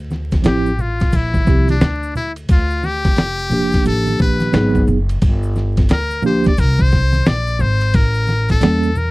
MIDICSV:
0, 0, Header, 1, 5, 480
1, 0, Start_track
1, 0, Key_signature, -1, "minor"
1, 0, Tempo, 681818
1, 1752, Time_signature, 4, 2, 24, 8
1, 6413, End_track
2, 0, Start_track
2, 0, Title_t, "Muted trumpet"
2, 0, Program_c, 0, 59
2, 329, Note_on_c, 0, 67, 78
2, 569, Note_on_c, 0, 65, 77
2, 580, Note_off_c, 0, 67, 0
2, 816, Note_on_c, 0, 64, 89
2, 826, Note_off_c, 0, 65, 0
2, 1197, Note_off_c, 0, 64, 0
2, 1200, Note_on_c, 0, 62, 76
2, 1497, Note_off_c, 0, 62, 0
2, 1528, Note_on_c, 0, 64, 81
2, 1632, Note_off_c, 0, 64, 0
2, 1773, Note_on_c, 0, 65, 90
2, 2009, Note_on_c, 0, 67, 108
2, 2020, Note_off_c, 0, 65, 0
2, 2721, Note_off_c, 0, 67, 0
2, 2725, Note_on_c, 0, 69, 106
2, 2942, Note_off_c, 0, 69, 0
2, 2969, Note_on_c, 0, 71, 86
2, 3413, Note_off_c, 0, 71, 0
2, 4171, Note_on_c, 0, 70, 102
2, 4385, Note_off_c, 0, 70, 0
2, 4410, Note_on_c, 0, 72, 86
2, 4544, Note_off_c, 0, 72, 0
2, 4562, Note_on_c, 0, 74, 99
2, 4643, Note_on_c, 0, 70, 110
2, 4653, Note_off_c, 0, 74, 0
2, 4798, Note_on_c, 0, 72, 105
2, 4808, Note_off_c, 0, 70, 0
2, 5119, Note_on_c, 0, 74, 93
2, 5130, Note_off_c, 0, 72, 0
2, 5358, Note_on_c, 0, 72, 98
2, 5368, Note_off_c, 0, 74, 0
2, 5599, Note_on_c, 0, 70, 106
2, 5610, Note_off_c, 0, 72, 0
2, 5989, Note_off_c, 0, 70, 0
2, 5994, Note_on_c, 0, 69, 91
2, 6318, Note_on_c, 0, 70, 87
2, 6328, Note_off_c, 0, 69, 0
2, 6413, Note_off_c, 0, 70, 0
2, 6413, End_track
3, 0, Start_track
3, 0, Title_t, "Tine electric piano"
3, 0, Program_c, 1, 4
3, 298, Note_on_c, 1, 53, 70
3, 307, Note_on_c, 1, 60, 68
3, 316, Note_on_c, 1, 64, 71
3, 325, Note_on_c, 1, 67, 82
3, 493, Note_off_c, 1, 53, 0
3, 497, Note_off_c, 1, 60, 0
3, 502, Note_off_c, 1, 64, 0
3, 506, Note_off_c, 1, 67, 0
3, 1022, Note_on_c, 1, 53, 55
3, 1030, Note_on_c, 1, 60, 55
3, 1039, Note_on_c, 1, 64, 53
3, 1047, Note_on_c, 1, 67, 66
3, 1215, Note_off_c, 1, 53, 0
3, 1219, Note_off_c, 1, 60, 0
3, 1223, Note_off_c, 1, 64, 0
3, 1227, Note_off_c, 1, 67, 0
3, 2462, Note_on_c, 1, 53, 66
3, 2469, Note_on_c, 1, 58, 54
3, 2479, Note_on_c, 1, 62, 56
3, 2488, Note_on_c, 1, 67, 75
3, 3152, Note_off_c, 1, 53, 0
3, 3156, Note_off_c, 1, 58, 0
3, 3161, Note_off_c, 1, 62, 0
3, 3165, Note_off_c, 1, 67, 0
3, 3181, Note_on_c, 1, 54, 68
3, 3190, Note_on_c, 1, 59, 71
3, 3200, Note_on_c, 1, 63, 65
3, 3208, Note_on_c, 1, 68, 76
3, 3488, Note_off_c, 1, 54, 0
3, 3492, Note_off_c, 1, 59, 0
3, 3497, Note_off_c, 1, 63, 0
3, 3501, Note_off_c, 1, 68, 0
3, 4382, Note_on_c, 1, 53, 82
3, 4390, Note_on_c, 1, 58, 72
3, 4399, Note_on_c, 1, 62, 71
3, 4407, Note_on_c, 1, 67, 90
3, 4575, Note_off_c, 1, 53, 0
3, 4579, Note_off_c, 1, 58, 0
3, 4583, Note_off_c, 1, 62, 0
3, 4587, Note_off_c, 1, 67, 0
3, 6059, Note_on_c, 1, 55, 76
3, 6068, Note_on_c, 1, 58, 66
3, 6077, Note_on_c, 1, 61, 63
3, 6087, Note_on_c, 1, 69, 83
3, 6253, Note_off_c, 1, 55, 0
3, 6258, Note_off_c, 1, 58, 0
3, 6262, Note_off_c, 1, 61, 0
3, 6267, Note_off_c, 1, 69, 0
3, 6413, End_track
4, 0, Start_track
4, 0, Title_t, "Upright bass"
4, 0, Program_c, 2, 32
4, 0, Note_on_c, 2, 38, 91
4, 291, Note_off_c, 2, 38, 0
4, 314, Note_on_c, 2, 33, 84
4, 769, Note_off_c, 2, 33, 0
4, 795, Note_on_c, 2, 34, 89
4, 1022, Note_off_c, 2, 34, 0
4, 1036, Note_on_c, 2, 36, 89
4, 1262, Note_off_c, 2, 36, 0
4, 1272, Note_on_c, 2, 38, 77
4, 1728, Note_off_c, 2, 38, 0
4, 1755, Note_on_c, 2, 38, 101
4, 2210, Note_off_c, 2, 38, 0
4, 2229, Note_on_c, 2, 29, 77
4, 2687, Note_off_c, 2, 29, 0
4, 2713, Note_on_c, 2, 33, 91
4, 2941, Note_off_c, 2, 33, 0
4, 2956, Note_on_c, 2, 34, 82
4, 3183, Note_off_c, 2, 34, 0
4, 3192, Note_on_c, 2, 32, 102
4, 3420, Note_off_c, 2, 32, 0
4, 3434, Note_on_c, 2, 30, 87
4, 3661, Note_off_c, 2, 30, 0
4, 3674, Note_on_c, 2, 31, 91
4, 4129, Note_off_c, 2, 31, 0
4, 4153, Note_on_c, 2, 38, 97
4, 4609, Note_off_c, 2, 38, 0
4, 4634, Note_on_c, 2, 36, 104
4, 5089, Note_off_c, 2, 36, 0
4, 5114, Note_on_c, 2, 34, 89
4, 5341, Note_off_c, 2, 34, 0
4, 5354, Note_on_c, 2, 32, 98
4, 5581, Note_off_c, 2, 32, 0
4, 5593, Note_on_c, 2, 33, 100
4, 6049, Note_off_c, 2, 33, 0
4, 6076, Note_on_c, 2, 40, 85
4, 6413, Note_off_c, 2, 40, 0
4, 6413, End_track
5, 0, Start_track
5, 0, Title_t, "Drums"
5, 73, Note_on_c, 9, 63, 42
5, 73, Note_on_c, 9, 82, 40
5, 81, Note_on_c, 9, 38, 33
5, 144, Note_off_c, 9, 63, 0
5, 144, Note_off_c, 9, 82, 0
5, 151, Note_off_c, 9, 38, 0
5, 221, Note_on_c, 9, 82, 46
5, 226, Note_on_c, 9, 51, 59
5, 227, Note_on_c, 9, 36, 85
5, 238, Note_on_c, 9, 38, 34
5, 292, Note_off_c, 9, 82, 0
5, 297, Note_off_c, 9, 36, 0
5, 297, Note_off_c, 9, 51, 0
5, 308, Note_off_c, 9, 38, 0
5, 308, Note_on_c, 9, 44, 54
5, 308, Note_on_c, 9, 51, 69
5, 310, Note_on_c, 9, 82, 59
5, 322, Note_on_c, 9, 38, 109
5, 379, Note_off_c, 9, 44, 0
5, 379, Note_off_c, 9, 51, 0
5, 381, Note_off_c, 9, 82, 0
5, 393, Note_off_c, 9, 38, 0
5, 466, Note_on_c, 9, 82, 46
5, 536, Note_off_c, 9, 82, 0
5, 554, Note_on_c, 9, 64, 63
5, 554, Note_on_c, 9, 82, 47
5, 625, Note_off_c, 9, 64, 0
5, 625, Note_off_c, 9, 82, 0
5, 703, Note_on_c, 9, 82, 51
5, 712, Note_on_c, 9, 36, 88
5, 713, Note_on_c, 9, 38, 34
5, 714, Note_on_c, 9, 51, 55
5, 773, Note_off_c, 9, 82, 0
5, 783, Note_off_c, 9, 36, 0
5, 783, Note_off_c, 9, 38, 0
5, 784, Note_off_c, 9, 51, 0
5, 791, Note_on_c, 9, 82, 77
5, 795, Note_on_c, 9, 36, 74
5, 796, Note_on_c, 9, 51, 77
5, 861, Note_off_c, 9, 82, 0
5, 866, Note_off_c, 9, 36, 0
5, 867, Note_off_c, 9, 51, 0
5, 943, Note_on_c, 9, 36, 88
5, 943, Note_on_c, 9, 63, 59
5, 943, Note_on_c, 9, 82, 41
5, 1013, Note_off_c, 9, 36, 0
5, 1013, Note_off_c, 9, 63, 0
5, 1013, Note_off_c, 9, 82, 0
5, 1033, Note_on_c, 9, 82, 53
5, 1035, Note_on_c, 9, 38, 34
5, 1037, Note_on_c, 9, 36, 100
5, 1103, Note_off_c, 9, 82, 0
5, 1105, Note_off_c, 9, 38, 0
5, 1107, Note_off_c, 9, 36, 0
5, 1183, Note_on_c, 9, 63, 60
5, 1183, Note_on_c, 9, 82, 51
5, 1190, Note_on_c, 9, 51, 59
5, 1254, Note_off_c, 9, 63, 0
5, 1254, Note_off_c, 9, 82, 0
5, 1260, Note_off_c, 9, 51, 0
5, 1272, Note_on_c, 9, 82, 62
5, 1276, Note_on_c, 9, 38, 112
5, 1281, Note_on_c, 9, 44, 36
5, 1281, Note_on_c, 9, 51, 60
5, 1342, Note_off_c, 9, 82, 0
5, 1347, Note_off_c, 9, 38, 0
5, 1351, Note_off_c, 9, 44, 0
5, 1351, Note_off_c, 9, 51, 0
5, 1430, Note_on_c, 9, 82, 48
5, 1500, Note_off_c, 9, 82, 0
5, 1517, Note_on_c, 9, 64, 65
5, 1517, Note_on_c, 9, 82, 49
5, 1587, Note_off_c, 9, 64, 0
5, 1587, Note_off_c, 9, 82, 0
5, 1663, Note_on_c, 9, 51, 54
5, 1667, Note_on_c, 9, 82, 41
5, 1734, Note_off_c, 9, 51, 0
5, 1738, Note_off_c, 9, 82, 0
5, 1751, Note_on_c, 9, 51, 86
5, 1753, Note_on_c, 9, 82, 58
5, 1754, Note_on_c, 9, 36, 113
5, 1822, Note_off_c, 9, 51, 0
5, 1823, Note_off_c, 9, 82, 0
5, 1824, Note_off_c, 9, 36, 0
5, 1903, Note_on_c, 9, 82, 44
5, 1974, Note_off_c, 9, 82, 0
5, 1993, Note_on_c, 9, 63, 38
5, 1993, Note_on_c, 9, 82, 39
5, 1996, Note_on_c, 9, 38, 36
5, 2063, Note_off_c, 9, 63, 0
5, 2063, Note_off_c, 9, 82, 0
5, 2066, Note_off_c, 9, 38, 0
5, 2143, Note_on_c, 9, 82, 45
5, 2145, Note_on_c, 9, 51, 58
5, 2146, Note_on_c, 9, 36, 92
5, 2157, Note_on_c, 9, 38, 34
5, 2214, Note_off_c, 9, 82, 0
5, 2216, Note_off_c, 9, 51, 0
5, 2217, Note_off_c, 9, 36, 0
5, 2226, Note_on_c, 9, 44, 51
5, 2226, Note_on_c, 9, 51, 67
5, 2228, Note_off_c, 9, 38, 0
5, 2231, Note_on_c, 9, 82, 57
5, 2240, Note_on_c, 9, 38, 102
5, 2297, Note_off_c, 9, 44, 0
5, 2297, Note_off_c, 9, 51, 0
5, 2301, Note_off_c, 9, 82, 0
5, 2311, Note_off_c, 9, 38, 0
5, 2384, Note_on_c, 9, 82, 45
5, 2454, Note_off_c, 9, 82, 0
5, 2470, Note_on_c, 9, 64, 69
5, 2470, Note_on_c, 9, 82, 51
5, 2540, Note_off_c, 9, 64, 0
5, 2540, Note_off_c, 9, 82, 0
5, 2619, Note_on_c, 9, 82, 51
5, 2632, Note_on_c, 9, 36, 90
5, 2632, Note_on_c, 9, 38, 37
5, 2633, Note_on_c, 9, 51, 52
5, 2690, Note_off_c, 9, 82, 0
5, 2703, Note_off_c, 9, 36, 0
5, 2703, Note_off_c, 9, 38, 0
5, 2704, Note_off_c, 9, 51, 0
5, 2710, Note_on_c, 9, 82, 78
5, 2715, Note_on_c, 9, 51, 75
5, 2780, Note_off_c, 9, 82, 0
5, 2786, Note_off_c, 9, 51, 0
5, 2861, Note_on_c, 9, 63, 58
5, 2861, Note_on_c, 9, 82, 44
5, 2932, Note_off_c, 9, 63, 0
5, 2932, Note_off_c, 9, 82, 0
5, 2952, Note_on_c, 9, 82, 45
5, 2955, Note_on_c, 9, 38, 34
5, 2957, Note_on_c, 9, 36, 88
5, 3022, Note_off_c, 9, 82, 0
5, 3025, Note_off_c, 9, 38, 0
5, 3027, Note_off_c, 9, 36, 0
5, 3097, Note_on_c, 9, 63, 70
5, 3097, Note_on_c, 9, 82, 49
5, 3110, Note_on_c, 9, 51, 56
5, 3168, Note_off_c, 9, 63, 0
5, 3168, Note_off_c, 9, 82, 0
5, 3181, Note_off_c, 9, 51, 0
5, 3189, Note_on_c, 9, 82, 59
5, 3196, Note_on_c, 9, 38, 108
5, 3200, Note_on_c, 9, 44, 41
5, 3200, Note_on_c, 9, 51, 62
5, 3260, Note_off_c, 9, 82, 0
5, 3266, Note_off_c, 9, 38, 0
5, 3270, Note_off_c, 9, 44, 0
5, 3270, Note_off_c, 9, 51, 0
5, 3344, Note_on_c, 9, 36, 91
5, 3345, Note_on_c, 9, 82, 49
5, 3414, Note_off_c, 9, 36, 0
5, 3415, Note_off_c, 9, 82, 0
5, 3432, Note_on_c, 9, 64, 67
5, 3432, Note_on_c, 9, 82, 50
5, 3502, Note_off_c, 9, 64, 0
5, 3502, Note_off_c, 9, 82, 0
5, 3585, Note_on_c, 9, 51, 62
5, 3586, Note_on_c, 9, 82, 46
5, 3656, Note_off_c, 9, 51, 0
5, 3657, Note_off_c, 9, 82, 0
5, 3672, Note_on_c, 9, 51, 83
5, 3672, Note_on_c, 9, 82, 54
5, 3675, Note_on_c, 9, 36, 127
5, 3743, Note_off_c, 9, 51, 0
5, 3743, Note_off_c, 9, 82, 0
5, 3745, Note_off_c, 9, 36, 0
5, 3822, Note_on_c, 9, 82, 49
5, 3893, Note_off_c, 9, 82, 0
5, 3911, Note_on_c, 9, 63, 43
5, 3911, Note_on_c, 9, 82, 43
5, 3917, Note_on_c, 9, 38, 39
5, 3981, Note_off_c, 9, 63, 0
5, 3981, Note_off_c, 9, 82, 0
5, 3987, Note_off_c, 9, 38, 0
5, 4060, Note_on_c, 9, 82, 41
5, 4064, Note_on_c, 9, 51, 63
5, 4066, Note_on_c, 9, 36, 87
5, 4075, Note_on_c, 9, 38, 37
5, 4130, Note_off_c, 9, 82, 0
5, 4134, Note_off_c, 9, 51, 0
5, 4137, Note_off_c, 9, 36, 0
5, 4146, Note_off_c, 9, 38, 0
5, 4146, Note_on_c, 9, 44, 49
5, 4146, Note_on_c, 9, 51, 73
5, 4146, Note_on_c, 9, 82, 64
5, 4161, Note_on_c, 9, 38, 120
5, 4217, Note_off_c, 9, 44, 0
5, 4217, Note_off_c, 9, 51, 0
5, 4217, Note_off_c, 9, 82, 0
5, 4231, Note_off_c, 9, 38, 0
5, 4300, Note_on_c, 9, 82, 48
5, 4370, Note_off_c, 9, 82, 0
5, 4382, Note_on_c, 9, 64, 62
5, 4382, Note_on_c, 9, 82, 43
5, 4452, Note_off_c, 9, 64, 0
5, 4452, Note_off_c, 9, 82, 0
5, 4534, Note_on_c, 9, 82, 50
5, 4549, Note_on_c, 9, 38, 41
5, 4550, Note_on_c, 9, 51, 54
5, 4552, Note_on_c, 9, 36, 97
5, 4604, Note_off_c, 9, 82, 0
5, 4619, Note_off_c, 9, 38, 0
5, 4620, Note_off_c, 9, 51, 0
5, 4622, Note_off_c, 9, 36, 0
5, 4628, Note_on_c, 9, 82, 77
5, 4634, Note_on_c, 9, 51, 82
5, 4635, Note_on_c, 9, 36, 89
5, 4698, Note_off_c, 9, 82, 0
5, 4705, Note_off_c, 9, 36, 0
5, 4705, Note_off_c, 9, 51, 0
5, 4776, Note_on_c, 9, 63, 65
5, 4776, Note_on_c, 9, 82, 45
5, 4782, Note_on_c, 9, 36, 88
5, 4847, Note_off_c, 9, 63, 0
5, 4847, Note_off_c, 9, 82, 0
5, 4853, Note_off_c, 9, 36, 0
5, 4868, Note_on_c, 9, 82, 55
5, 4875, Note_on_c, 9, 38, 34
5, 4876, Note_on_c, 9, 36, 103
5, 4938, Note_off_c, 9, 82, 0
5, 4946, Note_off_c, 9, 38, 0
5, 4947, Note_off_c, 9, 36, 0
5, 5016, Note_on_c, 9, 63, 65
5, 5016, Note_on_c, 9, 82, 47
5, 5030, Note_on_c, 9, 51, 56
5, 5086, Note_off_c, 9, 63, 0
5, 5086, Note_off_c, 9, 82, 0
5, 5101, Note_off_c, 9, 51, 0
5, 5108, Note_on_c, 9, 82, 63
5, 5114, Note_on_c, 9, 38, 110
5, 5118, Note_on_c, 9, 44, 44
5, 5118, Note_on_c, 9, 51, 59
5, 5178, Note_off_c, 9, 82, 0
5, 5185, Note_off_c, 9, 38, 0
5, 5189, Note_off_c, 9, 44, 0
5, 5189, Note_off_c, 9, 51, 0
5, 5260, Note_on_c, 9, 82, 48
5, 5330, Note_off_c, 9, 82, 0
5, 5345, Note_on_c, 9, 64, 71
5, 5345, Note_on_c, 9, 82, 53
5, 5415, Note_off_c, 9, 64, 0
5, 5415, Note_off_c, 9, 82, 0
5, 5496, Note_on_c, 9, 82, 45
5, 5502, Note_on_c, 9, 51, 55
5, 5566, Note_off_c, 9, 82, 0
5, 5572, Note_off_c, 9, 51, 0
5, 5585, Note_on_c, 9, 82, 61
5, 5589, Note_on_c, 9, 51, 93
5, 5593, Note_on_c, 9, 36, 127
5, 5655, Note_off_c, 9, 82, 0
5, 5659, Note_off_c, 9, 51, 0
5, 5663, Note_off_c, 9, 36, 0
5, 5732, Note_on_c, 9, 82, 51
5, 5802, Note_off_c, 9, 82, 0
5, 5824, Note_on_c, 9, 63, 43
5, 5824, Note_on_c, 9, 82, 43
5, 5835, Note_on_c, 9, 38, 41
5, 5894, Note_off_c, 9, 63, 0
5, 5894, Note_off_c, 9, 82, 0
5, 5906, Note_off_c, 9, 38, 0
5, 5973, Note_on_c, 9, 82, 47
5, 5981, Note_on_c, 9, 51, 64
5, 5984, Note_on_c, 9, 36, 77
5, 5993, Note_on_c, 9, 38, 38
5, 6044, Note_off_c, 9, 82, 0
5, 6051, Note_off_c, 9, 51, 0
5, 6054, Note_off_c, 9, 36, 0
5, 6062, Note_on_c, 9, 44, 53
5, 6062, Note_on_c, 9, 51, 80
5, 6063, Note_off_c, 9, 38, 0
5, 6063, Note_on_c, 9, 82, 64
5, 6076, Note_on_c, 9, 38, 108
5, 6132, Note_off_c, 9, 44, 0
5, 6132, Note_off_c, 9, 51, 0
5, 6133, Note_off_c, 9, 82, 0
5, 6146, Note_off_c, 9, 38, 0
5, 6217, Note_on_c, 9, 82, 49
5, 6287, Note_off_c, 9, 82, 0
5, 6303, Note_on_c, 9, 64, 58
5, 6303, Note_on_c, 9, 82, 49
5, 6373, Note_off_c, 9, 64, 0
5, 6373, Note_off_c, 9, 82, 0
5, 6413, End_track
0, 0, End_of_file